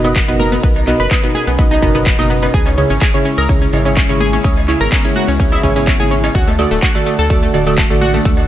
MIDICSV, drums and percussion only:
0, 0, Header, 1, 2, 480
1, 0, Start_track
1, 0, Tempo, 476190
1, 640, Time_signature, 4, 2, 24, 8
1, 8544, End_track
2, 0, Start_track
2, 0, Title_t, "Drums"
2, 43, Note_on_c, 9, 76, 83
2, 46, Note_on_c, 9, 42, 50
2, 144, Note_off_c, 9, 76, 0
2, 147, Note_off_c, 9, 42, 0
2, 160, Note_on_c, 9, 36, 122
2, 160, Note_on_c, 9, 42, 72
2, 160, Note_on_c, 9, 51, 52
2, 161, Note_on_c, 9, 39, 120
2, 261, Note_off_c, 9, 36, 0
2, 261, Note_off_c, 9, 42, 0
2, 261, Note_off_c, 9, 51, 0
2, 262, Note_off_c, 9, 39, 0
2, 286, Note_on_c, 9, 42, 37
2, 387, Note_off_c, 9, 42, 0
2, 400, Note_on_c, 9, 46, 108
2, 400, Note_on_c, 9, 51, 73
2, 401, Note_on_c, 9, 63, 84
2, 501, Note_off_c, 9, 46, 0
2, 501, Note_off_c, 9, 51, 0
2, 501, Note_off_c, 9, 63, 0
2, 526, Note_on_c, 9, 42, 50
2, 527, Note_on_c, 9, 63, 87
2, 530, Note_on_c, 9, 76, 40
2, 627, Note_off_c, 9, 42, 0
2, 628, Note_off_c, 9, 63, 0
2, 631, Note_off_c, 9, 76, 0
2, 639, Note_on_c, 9, 42, 75
2, 639, Note_on_c, 9, 51, 53
2, 640, Note_on_c, 9, 36, 118
2, 740, Note_off_c, 9, 36, 0
2, 740, Note_off_c, 9, 42, 0
2, 740, Note_off_c, 9, 51, 0
2, 768, Note_on_c, 9, 56, 72
2, 869, Note_off_c, 9, 56, 0
2, 879, Note_on_c, 9, 46, 115
2, 879, Note_on_c, 9, 51, 78
2, 881, Note_on_c, 9, 39, 37
2, 980, Note_off_c, 9, 46, 0
2, 980, Note_off_c, 9, 51, 0
2, 982, Note_off_c, 9, 39, 0
2, 1006, Note_on_c, 9, 42, 52
2, 1107, Note_off_c, 9, 42, 0
2, 1118, Note_on_c, 9, 76, 71
2, 1119, Note_on_c, 9, 36, 127
2, 1119, Note_on_c, 9, 42, 80
2, 1119, Note_on_c, 9, 51, 55
2, 1121, Note_on_c, 9, 39, 121
2, 1219, Note_off_c, 9, 76, 0
2, 1220, Note_off_c, 9, 36, 0
2, 1220, Note_off_c, 9, 42, 0
2, 1220, Note_off_c, 9, 51, 0
2, 1221, Note_off_c, 9, 39, 0
2, 1245, Note_on_c, 9, 42, 35
2, 1346, Note_off_c, 9, 42, 0
2, 1355, Note_on_c, 9, 63, 69
2, 1359, Note_on_c, 9, 46, 113
2, 1359, Note_on_c, 9, 51, 79
2, 1456, Note_off_c, 9, 63, 0
2, 1460, Note_off_c, 9, 46, 0
2, 1460, Note_off_c, 9, 51, 0
2, 1486, Note_on_c, 9, 42, 49
2, 1586, Note_off_c, 9, 42, 0
2, 1599, Note_on_c, 9, 36, 127
2, 1599, Note_on_c, 9, 42, 75
2, 1599, Note_on_c, 9, 51, 55
2, 1606, Note_on_c, 9, 76, 44
2, 1607, Note_on_c, 9, 63, 65
2, 1700, Note_off_c, 9, 36, 0
2, 1700, Note_off_c, 9, 42, 0
2, 1700, Note_off_c, 9, 51, 0
2, 1707, Note_off_c, 9, 76, 0
2, 1708, Note_off_c, 9, 63, 0
2, 1726, Note_on_c, 9, 42, 34
2, 1727, Note_on_c, 9, 56, 72
2, 1827, Note_off_c, 9, 42, 0
2, 1828, Note_off_c, 9, 56, 0
2, 1839, Note_on_c, 9, 36, 62
2, 1839, Note_on_c, 9, 46, 110
2, 1839, Note_on_c, 9, 51, 80
2, 1940, Note_off_c, 9, 36, 0
2, 1940, Note_off_c, 9, 46, 0
2, 1940, Note_off_c, 9, 51, 0
2, 1966, Note_on_c, 9, 42, 52
2, 2066, Note_off_c, 9, 42, 0
2, 2079, Note_on_c, 9, 36, 118
2, 2079, Note_on_c, 9, 42, 72
2, 2079, Note_on_c, 9, 51, 52
2, 2081, Note_on_c, 9, 39, 111
2, 2180, Note_off_c, 9, 36, 0
2, 2180, Note_off_c, 9, 42, 0
2, 2180, Note_off_c, 9, 51, 0
2, 2182, Note_off_c, 9, 39, 0
2, 2205, Note_on_c, 9, 42, 36
2, 2207, Note_on_c, 9, 76, 81
2, 2208, Note_on_c, 9, 63, 60
2, 2306, Note_off_c, 9, 42, 0
2, 2308, Note_off_c, 9, 63, 0
2, 2308, Note_off_c, 9, 76, 0
2, 2319, Note_on_c, 9, 46, 111
2, 2319, Note_on_c, 9, 51, 75
2, 2420, Note_off_c, 9, 46, 0
2, 2420, Note_off_c, 9, 51, 0
2, 2446, Note_on_c, 9, 42, 49
2, 2449, Note_on_c, 9, 56, 91
2, 2546, Note_off_c, 9, 42, 0
2, 2550, Note_off_c, 9, 56, 0
2, 2558, Note_on_c, 9, 54, 61
2, 2559, Note_on_c, 9, 36, 119
2, 2559, Note_on_c, 9, 42, 77
2, 2559, Note_on_c, 9, 51, 57
2, 2659, Note_off_c, 9, 54, 0
2, 2660, Note_off_c, 9, 36, 0
2, 2660, Note_off_c, 9, 42, 0
2, 2660, Note_off_c, 9, 51, 0
2, 2679, Note_on_c, 9, 56, 83
2, 2686, Note_on_c, 9, 54, 40
2, 2780, Note_off_c, 9, 56, 0
2, 2787, Note_off_c, 9, 54, 0
2, 2789, Note_on_c, 9, 76, 36
2, 2799, Note_on_c, 9, 46, 109
2, 2799, Note_on_c, 9, 51, 81
2, 2890, Note_off_c, 9, 76, 0
2, 2900, Note_off_c, 9, 46, 0
2, 2900, Note_off_c, 9, 51, 0
2, 2922, Note_on_c, 9, 54, 77
2, 2926, Note_on_c, 9, 42, 53
2, 3023, Note_off_c, 9, 54, 0
2, 3027, Note_off_c, 9, 42, 0
2, 3035, Note_on_c, 9, 54, 61
2, 3040, Note_on_c, 9, 36, 125
2, 3040, Note_on_c, 9, 42, 75
2, 3040, Note_on_c, 9, 51, 58
2, 3041, Note_on_c, 9, 39, 113
2, 3136, Note_off_c, 9, 54, 0
2, 3140, Note_off_c, 9, 36, 0
2, 3140, Note_off_c, 9, 42, 0
2, 3140, Note_off_c, 9, 51, 0
2, 3142, Note_off_c, 9, 39, 0
2, 3166, Note_on_c, 9, 42, 35
2, 3169, Note_on_c, 9, 54, 38
2, 3267, Note_off_c, 9, 42, 0
2, 3270, Note_off_c, 9, 54, 0
2, 3279, Note_on_c, 9, 46, 113
2, 3279, Note_on_c, 9, 51, 84
2, 3380, Note_off_c, 9, 46, 0
2, 3380, Note_off_c, 9, 51, 0
2, 3406, Note_on_c, 9, 42, 51
2, 3406, Note_on_c, 9, 76, 73
2, 3407, Note_on_c, 9, 54, 75
2, 3507, Note_off_c, 9, 42, 0
2, 3507, Note_off_c, 9, 76, 0
2, 3508, Note_off_c, 9, 54, 0
2, 3519, Note_on_c, 9, 42, 79
2, 3519, Note_on_c, 9, 51, 54
2, 3520, Note_on_c, 9, 36, 120
2, 3527, Note_on_c, 9, 54, 70
2, 3620, Note_off_c, 9, 42, 0
2, 3620, Note_off_c, 9, 51, 0
2, 3621, Note_off_c, 9, 36, 0
2, 3627, Note_off_c, 9, 54, 0
2, 3646, Note_on_c, 9, 42, 34
2, 3649, Note_on_c, 9, 54, 41
2, 3746, Note_off_c, 9, 42, 0
2, 3749, Note_off_c, 9, 54, 0
2, 3759, Note_on_c, 9, 46, 108
2, 3759, Note_on_c, 9, 51, 77
2, 3764, Note_on_c, 9, 56, 86
2, 3860, Note_off_c, 9, 46, 0
2, 3860, Note_off_c, 9, 51, 0
2, 3865, Note_off_c, 9, 56, 0
2, 3883, Note_on_c, 9, 54, 74
2, 3886, Note_on_c, 9, 42, 50
2, 3895, Note_on_c, 9, 76, 38
2, 3984, Note_off_c, 9, 54, 0
2, 3987, Note_off_c, 9, 42, 0
2, 3996, Note_off_c, 9, 76, 0
2, 3999, Note_on_c, 9, 42, 73
2, 3999, Note_on_c, 9, 51, 54
2, 4000, Note_on_c, 9, 36, 111
2, 4001, Note_on_c, 9, 39, 112
2, 4002, Note_on_c, 9, 54, 65
2, 4100, Note_off_c, 9, 42, 0
2, 4100, Note_off_c, 9, 51, 0
2, 4101, Note_off_c, 9, 36, 0
2, 4102, Note_off_c, 9, 39, 0
2, 4103, Note_off_c, 9, 54, 0
2, 4126, Note_on_c, 9, 42, 35
2, 4126, Note_on_c, 9, 54, 43
2, 4226, Note_off_c, 9, 54, 0
2, 4227, Note_off_c, 9, 42, 0
2, 4235, Note_on_c, 9, 63, 93
2, 4240, Note_on_c, 9, 46, 103
2, 4240, Note_on_c, 9, 51, 81
2, 4336, Note_off_c, 9, 63, 0
2, 4340, Note_off_c, 9, 46, 0
2, 4340, Note_off_c, 9, 51, 0
2, 4363, Note_on_c, 9, 54, 72
2, 4363, Note_on_c, 9, 63, 87
2, 4366, Note_on_c, 9, 42, 51
2, 4464, Note_off_c, 9, 54, 0
2, 4464, Note_off_c, 9, 63, 0
2, 4467, Note_off_c, 9, 42, 0
2, 4476, Note_on_c, 9, 76, 66
2, 4479, Note_on_c, 9, 42, 79
2, 4479, Note_on_c, 9, 51, 60
2, 4480, Note_on_c, 9, 36, 113
2, 4480, Note_on_c, 9, 54, 60
2, 4576, Note_off_c, 9, 76, 0
2, 4580, Note_off_c, 9, 42, 0
2, 4580, Note_off_c, 9, 51, 0
2, 4581, Note_off_c, 9, 36, 0
2, 4581, Note_off_c, 9, 54, 0
2, 4605, Note_on_c, 9, 54, 39
2, 4610, Note_on_c, 9, 56, 70
2, 4706, Note_off_c, 9, 54, 0
2, 4711, Note_off_c, 9, 56, 0
2, 4719, Note_on_c, 9, 46, 102
2, 4719, Note_on_c, 9, 51, 85
2, 4721, Note_on_c, 9, 39, 35
2, 4820, Note_off_c, 9, 46, 0
2, 4820, Note_off_c, 9, 51, 0
2, 4822, Note_off_c, 9, 39, 0
2, 4846, Note_on_c, 9, 42, 53
2, 4847, Note_on_c, 9, 54, 74
2, 4947, Note_off_c, 9, 42, 0
2, 4948, Note_off_c, 9, 54, 0
2, 4960, Note_on_c, 9, 36, 120
2, 4960, Note_on_c, 9, 42, 79
2, 4960, Note_on_c, 9, 51, 60
2, 4961, Note_on_c, 9, 39, 113
2, 4961, Note_on_c, 9, 54, 68
2, 4961, Note_on_c, 9, 76, 41
2, 5061, Note_off_c, 9, 36, 0
2, 5061, Note_off_c, 9, 42, 0
2, 5061, Note_off_c, 9, 51, 0
2, 5061, Note_off_c, 9, 76, 0
2, 5062, Note_off_c, 9, 39, 0
2, 5062, Note_off_c, 9, 54, 0
2, 5083, Note_on_c, 9, 54, 37
2, 5086, Note_on_c, 9, 42, 36
2, 5184, Note_off_c, 9, 54, 0
2, 5187, Note_off_c, 9, 42, 0
2, 5195, Note_on_c, 9, 63, 66
2, 5200, Note_on_c, 9, 46, 107
2, 5200, Note_on_c, 9, 51, 81
2, 5296, Note_off_c, 9, 63, 0
2, 5300, Note_off_c, 9, 46, 0
2, 5300, Note_off_c, 9, 51, 0
2, 5327, Note_on_c, 9, 42, 53
2, 5327, Note_on_c, 9, 54, 82
2, 5427, Note_off_c, 9, 42, 0
2, 5428, Note_off_c, 9, 54, 0
2, 5435, Note_on_c, 9, 63, 68
2, 5440, Note_on_c, 9, 36, 117
2, 5440, Note_on_c, 9, 42, 81
2, 5440, Note_on_c, 9, 51, 60
2, 5442, Note_on_c, 9, 54, 69
2, 5536, Note_off_c, 9, 63, 0
2, 5541, Note_off_c, 9, 36, 0
2, 5541, Note_off_c, 9, 42, 0
2, 5541, Note_off_c, 9, 51, 0
2, 5543, Note_off_c, 9, 54, 0
2, 5564, Note_on_c, 9, 56, 71
2, 5567, Note_on_c, 9, 42, 34
2, 5568, Note_on_c, 9, 76, 85
2, 5572, Note_on_c, 9, 54, 40
2, 5665, Note_off_c, 9, 56, 0
2, 5668, Note_off_c, 9, 42, 0
2, 5669, Note_off_c, 9, 76, 0
2, 5673, Note_off_c, 9, 54, 0
2, 5680, Note_on_c, 9, 36, 60
2, 5681, Note_on_c, 9, 46, 104
2, 5681, Note_on_c, 9, 51, 84
2, 5781, Note_off_c, 9, 36, 0
2, 5781, Note_off_c, 9, 46, 0
2, 5781, Note_off_c, 9, 51, 0
2, 5807, Note_on_c, 9, 42, 54
2, 5810, Note_on_c, 9, 54, 81
2, 5908, Note_off_c, 9, 42, 0
2, 5911, Note_off_c, 9, 54, 0
2, 5920, Note_on_c, 9, 36, 115
2, 5920, Note_on_c, 9, 42, 80
2, 5920, Note_on_c, 9, 51, 57
2, 5922, Note_on_c, 9, 39, 109
2, 5928, Note_on_c, 9, 54, 65
2, 6021, Note_off_c, 9, 36, 0
2, 6021, Note_off_c, 9, 42, 0
2, 6021, Note_off_c, 9, 51, 0
2, 6023, Note_off_c, 9, 39, 0
2, 6029, Note_off_c, 9, 54, 0
2, 6042, Note_on_c, 9, 76, 39
2, 6046, Note_on_c, 9, 63, 62
2, 6047, Note_on_c, 9, 42, 35
2, 6052, Note_on_c, 9, 54, 37
2, 6143, Note_off_c, 9, 76, 0
2, 6147, Note_off_c, 9, 63, 0
2, 6148, Note_off_c, 9, 42, 0
2, 6153, Note_off_c, 9, 54, 0
2, 6160, Note_on_c, 9, 46, 103
2, 6160, Note_on_c, 9, 51, 82
2, 6260, Note_off_c, 9, 46, 0
2, 6260, Note_off_c, 9, 51, 0
2, 6287, Note_on_c, 9, 42, 55
2, 6289, Note_on_c, 9, 56, 88
2, 6293, Note_on_c, 9, 54, 79
2, 6388, Note_off_c, 9, 42, 0
2, 6390, Note_off_c, 9, 56, 0
2, 6394, Note_off_c, 9, 54, 0
2, 6400, Note_on_c, 9, 36, 111
2, 6400, Note_on_c, 9, 42, 82
2, 6400, Note_on_c, 9, 51, 58
2, 6401, Note_on_c, 9, 54, 62
2, 6501, Note_off_c, 9, 36, 0
2, 6501, Note_off_c, 9, 42, 0
2, 6501, Note_off_c, 9, 51, 0
2, 6502, Note_off_c, 9, 54, 0
2, 6531, Note_on_c, 9, 54, 34
2, 6533, Note_on_c, 9, 56, 70
2, 6632, Note_off_c, 9, 54, 0
2, 6633, Note_off_c, 9, 56, 0
2, 6639, Note_on_c, 9, 76, 80
2, 6640, Note_on_c, 9, 46, 108
2, 6640, Note_on_c, 9, 51, 87
2, 6740, Note_off_c, 9, 76, 0
2, 6741, Note_off_c, 9, 46, 0
2, 6741, Note_off_c, 9, 51, 0
2, 6763, Note_on_c, 9, 54, 79
2, 6767, Note_on_c, 9, 42, 58
2, 6864, Note_off_c, 9, 54, 0
2, 6867, Note_off_c, 9, 42, 0
2, 6876, Note_on_c, 9, 54, 61
2, 6880, Note_on_c, 9, 36, 121
2, 6880, Note_on_c, 9, 42, 83
2, 6880, Note_on_c, 9, 51, 61
2, 6882, Note_on_c, 9, 39, 118
2, 6977, Note_off_c, 9, 54, 0
2, 6981, Note_off_c, 9, 36, 0
2, 6981, Note_off_c, 9, 42, 0
2, 6981, Note_off_c, 9, 51, 0
2, 6982, Note_off_c, 9, 39, 0
2, 7007, Note_on_c, 9, 42, 40
2, 7007, Note_on_c, 9, 54, 36
2, 7108, Note_off_c, 9, 42, 0
2, 7108, Note_off_c, 9, 54, 0
2, 7120, Note_on_c, 9, 46, 108
2, 7120, Note_on_c, 9, 51, 88
2, 7125, Note_on_c, 9, 76, 38
2, 7221, Note_off_c, 9, 46, 0
2, 7221, Note_off_c, 9, 51, 0
2, 7226, Note_off_c, 9, 76, 0
2, 7247, Note_on_c, 9, 42, 53
2, 7247, Note_on_c, 9, 54, 84
2, 7347, Note_off_c, 9, 42, 0
2, 7347, Note_off_c, 9, 54, 0
2, 7358, Note_on_c, 9, 54, 72
2, 7360, Note_on_c, 9, 36, 111
2, 7360, Note_on_c, 9, 42, 82
2, 7360, Note_on_c, 9, 51, 61
2, 7459, Note_off_c, 9, 54, 0
2, 7461, Note_off_c, 9, 36, 0
2, 7461, Note_off_c, 9, 42, 0
2, 7461, Note_off_c, 9, 51, 0
2, 7487, Note_on_c, 9, 42, 39
2, 7489, Note_on_c, 9, 54, 39
2, 7587, Note_off_c, 9, 42, 0
2, 7590, Note_off_c, 9, 54, 0
2, 7599, Note_on_c, 9, 56, 78
2, 7600, Note_on_c, 9, 46, 101
2, 7600, Note_on_c, 9, 51, 87
2, 7700, Note_off_c, 9, 56, 0
2, 7701, Note_off_c, 9, 46, 0
2, 7701, Note_off_c, 9, 51, 0
2, 7727, Note_on_c, 9, 42, 57
2, 7728, Note_on_c, 9, 76, 72
2, 7729, Note_on_c, 9, 54, 70
2, 7827, Note_off_c, 9, 42, 0
2, 7829, Note_off_c, 9, 76, 0
2, 7830, Note_off_c, 9, 54, 0
2, 7838, Note_on_c, 9, 54, 66
2, 7840, Note_on_c, 9, 36, 113
2, 7840, Note_on_c, 9, 42, 82
2, 7840, Note_on_c, 9, 51, 57
2, 7842, Note_on_c, 9, 39, 113
2, 7939, Note_off_c, 9, 54, 0
2, 7941, Note_off_c, 9, 36, 0
2, 7941, Note_off_c, 9, 42, 0
2, 7941, Note_off_c, 9, 51, 0
2, 7942, Note_off_c, 9, 39, 0
2, 7965, Note_on_c, 9, 54, 40
2, 7967, Note_on_c, 9, 42, 40
2, 8066, Note_off_c, 9, 54, 0
2, 8067, Note_off_c, 9, 42, 0
2, 8080, Note_on_c, 9, 46, 99
2, 8080, Note_on_c, 9, 51, 84
2, 8082, Note_on_c, 9, 63, 86
2, 8181, Note_off_c, 9, 46, 0
2, 8181, Note_off_c, 9, 51, 0
2, 8182, Note_off_c, 9, 63, 0
2, 8206, Note_on_c, 9, 63, 97
2, 8207, Note_on_c, 9, 42, 57
2, 8207, Note_on_c, 9, 54, 80
2, 8208, Note_on_c, 9, 76, 37
2, 8307, Note_off_c, 9, 63, 0
2, 8308, Note_off_c, 9, 42, 0
2, 8308, Note_off_c, 9, 54, 0
2, 8309, Note_off_c, 9, 76, 0
2, 8319, Note_on_c, 9, 42, 83
2, 8319, Note_on_c, 9, 51, 58
2, 8319, Note_on_c, 9, 54, 63
2, 8320, Note_on_c, 9, 36, 117
2, 8420, Note_off_c, 9, 42, 0
2, 8420, Note_off_c, 9, 51, 0
2, 8420, Note_off_c, 9, 54, 0
2, 8421, Note_off_c, 9, 36, 0
2, 8438, Note_on_c, 9, 56, 77
2, 8446, Note_on_c, 9, 54, 36
2, 8539, Note_off_c, 9, 56, 0
2, 8544, Note_off_c, 9, 54, 0
2, 8544, End_track
0, 0, End_of_file